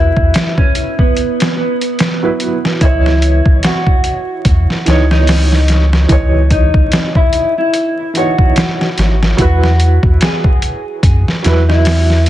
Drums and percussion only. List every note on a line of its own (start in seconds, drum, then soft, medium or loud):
0.17 kick loud
0.34 snare loud
0.34 closed hi-hat medium
0.58 kick loud
0.75 closed hi-hat medium
0.99 kick medium
1.17 closed hi-hat medium
1.40 snare medium
1.40 closed hi-hat medium
1.81 closed hi-hat medium
1.99 snare medium
1.99 closed hi-hat medium
2.40 closed hi-hat medium
2.65 snare medium
2.81 kick loud
2.81 closed hi-hat medium
3.06 snare medium
3.22 closed hi-hat medium
3.46 kick medium
3.63 snare loud
3.63 closed hi-hat medium
3.87 kick medium
4.04 closed hi-hat medium
4.45 kick loud
4.45 closed hi-hat medium
4.70 snare soft
4.86 snare medium
4.86 closed hi-hat medium
5.11 snare medium
5.27 snare loud
5.27 open hi-hat medium
5.52 snare soft
5.68 snare soft
5.68 closed hi-hat medium
5.93 snare medium
6.09 kick loud
6.09 closed hi-hat medium
6.51 kick medium
6.51 closed hi-hat medium
6.74 kick loud
6.92 snare loud
6.92 closed hi-hat medium
7.15 kick loud
7.33 closed hi-hat medium
7.74 closed hi-hat medium
8.15 closed hi-hat medium
8.38 kick medium
8.56 snare loud
8.56 closed hi-hat medium
8.81 snare soft
8.98 snare medium
8.98 closed hi-hat medium
9.23 snare medium
9.38 kick loud
9.38 closed hi-hat medium
9.64 snare soft
9.80 closed hi-hat medium
10.03 kick loud
10.21 snare loud
10.21 closed hi-hat medium
10.44 kick loud
10.62 closed hi-hat medium
11.03 kick loud
11.03 closed hi-hat medium
11.28 snare soft
11.44 snare medium
11.44 closed hi-hat medium
11.70 snare soft
11.85 snare loud
11.85 open hi-hat medium
12.10 snare soft
12.26 closed hi-hat medium